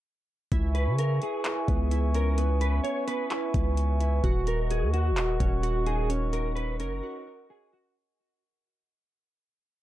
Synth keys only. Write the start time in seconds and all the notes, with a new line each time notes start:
0.52 E4
1.68 B3
1.91 E4
2.15 C#4
2.38 B3
3.07 B3
3.31 E4
4.01 E4
4.24 F#4
5.40 C#4
5.63 F#4
5.86 D#4
6.10 C#4
6.79 C#4
7.03 F#4
7.72 F#4